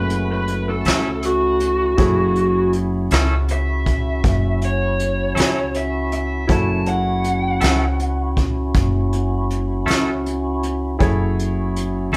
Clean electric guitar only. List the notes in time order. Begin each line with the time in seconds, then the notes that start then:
0.86 F#3 C#4 E4 A4
3.12 F#3 C#4 E4 A4
5.35 F#3 C#4 E4 A4
7.61 F#3 C#4 E4 A4
9.86 F#3 C#4 E4 A4
12.13 C#4 E4 A4